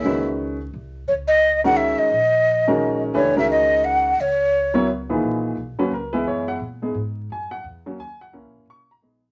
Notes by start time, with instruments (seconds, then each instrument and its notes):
Already playing: upright piano E3 A#3 G#4 C#5, flute E5
0.03 upright bass C#2, upright piano D#3 G#3 C#4 F#4 B4
0.74 upright bass C2
1.08 upright bass C#2, flute C#5
1.28 flute D#5
1.64 upright piano D#3 G#3 C#4 F#4 A#4, flute F#5
1.77 flute E5
1.98 flute D#5, muted upright bass stroke
2.11 upright bass A#1
2.67 upright piano D#3 G#3 C#4 F#4 A#4
3.13 upright bass C#2, upright piano E3 A3 D4 G4 B4, flute C#5
3.36 upright piano D#3 G#3 C#4 F#4 A#4, flute E5
3.51 flute D#5
3.84 flute F#5
4.18 upright bass C#2, flute C#5
4.74 upright piano F#3 B3 E4 A#4 C#5
5.09 upright piano A#2 D#3 E3 D#4 G#4 B4
5.22 upright bass A#1
5.57 upright bass B1
5.79 upright piano F#3 A#3 C#4 F#4 B4, muted upright bass stroke
5.91 upright bass C#2, upright piano A#4
6.13 upright piano E3 G#3 B3 E4 B4
6.26 upright bass F#2, upright piano C#5
6.48 upright piano F#5
6.60 upright bass A#2
6.82 upright piano G#3 B3 D#4 G#4
6.94 upright bass G#2
7.30 upright bass F#2, upright piano G#5
7.51 upright piano F#5
7.64 upright bass E2
7.86 upright piano F#3 A#3 C#4 F#4
7.98 upright bass D#2, upright piano G#5
8.21 upright piano F#5
8.32 upright bass C#2, upright piano A#3 C#4 E4 A#4
8.44 upright bass A#1
8.55 upright bass F#1
8.66 upright bass B1
8.70 upright piano C#6
8.91 upright piano A#5
9.01 upright bass A#1, upright piano G#3 B3 D#4 G#4